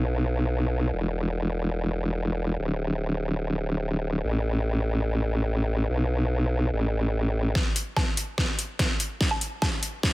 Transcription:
Already playing: wobble bass B1
0.93 wobble bass E1
2.59 wobble bass D1
4.24 wobble bass A1
5.90 wobble bass B1
6.72 wobble bass A1
7.55 kick, snare
7.76 closed hi-hat
7.96 kick, snare, low woodblock
8.17 closed hi-hat
8.38 kick, snare
8.59 closed hi-hat
8.79 kick, snare, closed hi-hat
9.00 closed hi-hat
9.21 kick, snare
9.31 low woodblock
9.41 closed hi-hat
9.62 kick, snare, low woodblock
9.83 closed hi-hat
10.03 kick, snare

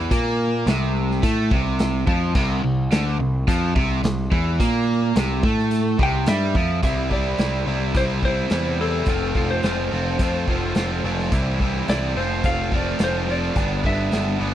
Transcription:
Already playing: overdriven electric guitar E3
0.11 picked electric bass A#2, overdriven electric guitar A#3, kick, closed hi-hat
0.66 picked electric bass C2, overdriven electric guitar C3, snare, closed hi-hat
1.11 snare
1.23 picked electric bass A2, overdriven electric guitar A3, kick, closed hi-hat
1.51 picked electric bass C2, overdriven electric guitar C3, kick
1.79 snare, closed hi-hat
2.07 picked electric bass F2, overdriven electric guitar F3, kick
2.35 picked electric bass C2, overdriven electric guitar C3, kick, crash
2.63 picked electric bass C2, overdriven electric guitar C3
2.91 picked electric bass D2, overdriven electric guitar D3, snare, closed hi-hat
3.19 picked electric bass C2, overdriven electric guitar C3
3.48 picked electric bass F2, overdriven electric guitar F3, kick, closed hi-hat
3.75 picked electric bass C2, overdriven electric guitar C3, kick
4.03 picked electric bass C2, overdriven electric guitar C3, snare, closed hi-hat
4.31 picked electric bass E2, overdriven electric guitar E3, kick
4.60 picked electric bass A#2, overdriven electric guitar A#3, kick, closed hi-hat
5.16 picked electric bass C2, overdriven electric guitar C3, snare, closed hi-hat
5.43 picked electric bass A2, overdriven electric guitar A3, kick
5.58 snare
5.71 closed hi-hat
5.99 picked electric bass C2, overdriven electric guitar C3, electric slide guitar G5, kick
6.26 picked electric bass G2, overdriven electric guitar G3, electric slide guitar E5, snare, closed hi-hat
6.55 picked electric bass F2, overdriven electric guitar F3, kick
6.83 picked electric bass C2, overdriven electric guitar C3 G3 C4 E4, electric slide guitar E5, kick, closed hi-hat
7.10 overdriven electric guitar C3 G3 C4 E4, electric slide guitar D5, kick
7.38 picked electric bass C2, overdriven electric guitar C3 G3 C4 E4, snare, closed hi-hat
7.66 picked electric bass C2, overdriven electric guitar C3 G3 C4 E4
7.95 picked electric bass C2, overdriven electric guitar C3 G3 C4 E4, electric slide guitar C5, kick, closed hi-hat
8.23 overdriven electric guitar C3 G3 C4 E4, electric slide guitar C5, kick
8.50 picked electric bass E2, overdriven electric guitar C3 G3 C4 E4, snare, closed hi-hat
8.80 overdriven electric guitar C3 G3 C4 E4, electric slide guitar A4
9.06 picked electric bass F1, overdriven electric guitar F3 A3 C4 F4, kick, closed hi-hat
9.35 picked electric bass F1, overdriven electric guitar F3 A3 C4 F4, kick
9.51 electric slide guitar C5
9.63 picked electric bass F1, overdriven electric guitar F3 A3 C4 F4, electric slide guitar C5, snare, closed hi-hat
9.92 picked electric bass F1, overdriven electric guitar F3 A3 C4 F4
10.19 picked electric bass F2, overdriven electric guitar F3 A3 C4 F4, kick, closed hi-hat
10.48 picked electric bass F1, overdriven electric guitar F3 A3 C4 F4, kick
10.75 picked electric bass F1, overdriven electric guitar F3 A3 C4 F4, snare, closed hi-hat
11.04 picked electric bass F1, overdriven electric guitar F3 A3 C4 F4, snare
11.19 snare
11.32 picked electric bass C2, overdriven electric guitar C3 E3 G3 C4 E4, kick, closed hi-hat
11.60 overdriven electric guitar C3 E3 G3 C4 E4, kick
11.88 picked electric bass C2, overdriven electric guitar C3 E3 G3 C4 E4, electric slide guitar D5, snare, closed hi-hat
12.16 picked electric bass F1, overdriven electric guitar F3 A3 C4 F4, electric slide guitar C5
12.44 picked electric bass F1, overdriven electric guitar F3 A3 C4 F4, electric slide guitar F5, kick, closed hi-hat
12.72 overdriven electric guitar F3 A3 C4 F4, electric slide guitar D5, kick
12.99 picked electric bass F1, overdriven electric guitar F3 A3 C4 F4, snare, closed hi-hat
13.04 electric slide guitar C5
13.28 overdriven electric guitar F3 A3 C4 F4, electric slide guitar D5
13.55 picked electric bass G1, overdriven electric guitar G2 D3 G3 B3 D4, kick, closed hi-hat
13.84 picked electric bass G1, overdriven electric guitar G2 D3 G3 B3 D4, electric slide guitar E5, kick
14.12 picked electric bass G1, overdriven electric guitar G2 D3 G3 B3 D4, snare, closed hi-hat
14.39 picked electric bass G1, overdriven electric guitar G2 D3 G3 B3 D4

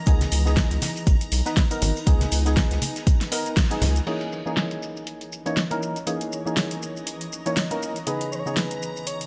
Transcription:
Already playing: ambient pad D#5 A#5, string machine A#5
0.06 analog synth bass C#2, synth stab B3 D#4 G#4, ambient pad D#4, kick, closed hi-hat, shaker
0.21 snare, closed hi-hat, high conga, shaker
0.32 analog synth bass C#2, open hi-hat, shaker
0.45 synth stab B3 D#4 G#4, snare, shaker
0.57 kick, snare, closed hi-hat, shaker
0.62 ambient pad B4
0.71 analog synth bass C#2, snare, closed hi-hat, shaker
0.81 snare, open hi-hat, high conga, shaker
0.96 closed hi-hat, shaker
1.07 analog synth bass G#1, kick, closed hi-hat, shaker
1.21 closed hi-hat, shaker
1.32 analog synth bass B1, open hi-hat, shaker
1.45 synth stab B3 D#4 B4, ambient pad G#5, snare, closed hi-hat, shaker
1.56 kick, snare, closed hi-hat, shaker
1.71 synth stab B3 D#4 A#4, closed hi-hat, shaker
1.82 analog synth bass G#1, open hi-hat, low conga, shaker
1.96 shaker
2.06 analog synth bass C#2, synth stab B3 D#4 G#4, kick, closed hi-hat, shaker
2.21 snare, closed hi-hat, high conga, shaker
2.31 analog synth bass C#2, open hi-hat, shaker
2.45 synth stab B3 D#4 G#4, snare, closed hi-hat, shaker
2.56 kick, snare, closed hi-hat, shaker
2.71 analog synth bass C#2, snare, closed hi-hat, shaker
2.82 open hi-hat, high conga, shaker
2.96 snare, closed hi-hat, shaker
3.07 kick, closed hi-hat, shaker
3.21 snare, closed hi-hat, shaker
3.31 synth stab B3 D#4 A#4, open hi-hat, shaker
3.46 closed hi-hat, shaker
3.57 kick, snare, closed hi-hat, shaker
3.71 synth stab B3 D#4 G#4, closed hi-hat, shaker
3.82 analog synth bass C#2, snare, open hi-hat, high conga, low conga, shaker
3.96 closed hi-hat, shaker
4.06 synth stab E3 A#3 C#4 D#4 G#4, ambient pad E3, closed hi-hat, crash, shaker
4.21 closed hi-hat, shaker
4.32 shaker
4.42 synth stab E3 A#3, ambient pad C#5
4.46 synth stab C#4 D#4 G#4, shaker
4.57 snare, closed hi-hat, shaker
4.71 closed hi-hat, shaker
4.83 ambient pad D#5, shaker
4.97 shaker
5.04 ambient pad A#5, closed hi-hat, shaker
5.21 closed hi-hat, shaker
5.33 shaker
5.46 synth stab E3 A#3 C#4 D#4 C#5, closed hi-hat, shaker
5.57 snare, closed hi-hat, shaker
5.71 synth stab E3 A#3 C#4 D#4 A#4, closed hi-hat, shaker
5.83 shaker
5.96 closed hi-hat, shaker
6.06 synth stab E3 A#3 C#4 D#4 G#4, closed hi-hat, shaker
6.21 closed hi-hat, shaker
6.32 shaker
6.45 synth stab E3 A#3 C#4 D#4 G#4, shaker
6.57 snare, closed hi-hat, shaker
6.71 closed hi-hat, shaker
6.82 shaker
6.97 shaker
7.07 closed hi-hat, shaker
7.21 closed hi-hat, shaker
7.32 shaker
7.46 synth stab E3 A#3 C#4 D#4 C#5, closed hi-hat, shaker
7.57 snare, closed hi-hat, shaker
7.71 synth stab E3 A#3 C#4 D#4 A#4, closed hi-hat, shaker
7.82 shaker
7.96 closed hi-hat, shaker
8.06 synth stab C#3 B3 D#4 G#4, ambient pad C#3, soft synth lead B4, string machine A#5, closed hi-hat, shaker
8.21 closed hi-hat, shaker
8.32 soft synth lead B4 C#5, shaker
8.39 ambient pad D#4, soft synth lead C#5
8.45 synth stab C#3 B3 D#4 G#4, soft synth lead C#5, shaker
8.57 soft synth lead B4, snare, closed hi-hat, shaker
8.71 closed hi-hat, shaker
8.82 shaker
8.97 shaker
9.07 soft synth lead C#5, closed hi-hat, shaker
9.21 closed hi-hat, shaker

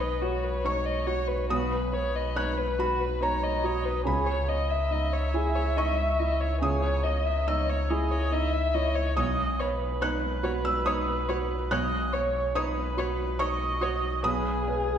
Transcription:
Already playing: felt piano B1 D#4 C#5 B5, sub bass B1, viola D#5
0.00 violin B4
0.21 violin F#4, felt piano F#4, viola C#5
0.44 violin B4
0.65 felt piano D#4 C#6, violin C#5
0.86 violin D#5
1.07 felt piano F#4, violin C#5
1.28 violin B4
1.50 felt piano B1 D#6, violin F#4, viola B4
1.72 violin B4
1.93 viola B4, felt piano C#5, violin C#5
2.15 violin D#5
2.35 felt piano D#4 F#6, violin C#5
2.58 violin B4
2.79 felt piano F#4 B5, violin F#4
3.00 violin B4
3.20 felt piano D#4 A#5, viola C#5, violin C#5
3.43 violin D#5
3.64 felt piano F#4, violin C#5, viola D#5
3.85 violin B4
4.05 felt piano C#2 B5, sub bass C#2, violin G#4, viola C#5
4.27 violin C#5
4.49 felt piano C#5, violin D#5, viola D#5
4.71 violin E5
4.91 felt piano D#4, violin D#5, viola E5
5.13 violin C#5
5.34 felt piano E4, violin G#4
5.55 violin C#5
5.77 felt piano D#4 C#6, violin D#5
5.98 violin E5
6.19 felt piano E4, violin D#5
6.41 violin C#5
6.61 felt piano C#2 D#6, violin G#4, viola C#5
6.83 violin C#5
7.04 felt piano C#5, violin D#5, viola D#5
7.26 violin E5
7.47 felt piano D#4 E6, viola C#5, violin D#5
7.69 violin C#5
7.90 felt piano E4, violin G#4, viola D#5
8.11 violin C#5
8.32 felt piano D#4, violin D#5, viola E5
8.53 violin E5
8.74 felt piano E4, viola C#5, violin D#5
8.95 violin C#5
9.17 sub bass B1, felt piano B1 D#6, violin C#5, viola D#5
9.59 viola B4, violin C#5, felt piano C#5
10.01 felt piano D#4 F#6, violin C#5
10.43 felt piano F#4, violin C#5
10.65 felt piano E6
10.86 felt piano D#4 D#6, violin C#5
11.29 felt piano F#4, violin C#5
11.71 felt piano B1 F#6, violin C#5, viola D#5
12.13 violin C#5, viola C#5, felt piano C#5
12.55 felt piano D#4 D#6, viola B4, violin C#5
12.97 felt piano F#4, violin C#5
13.39 felt piano D#4 C#6, violin C#5, viola D#5
13.81 felt piano F#4, violin C#5
14.23 sub bass B1, felt piano B1 D#6, violin G#4, viola B4
14.66 viola G#4, felt piano B4

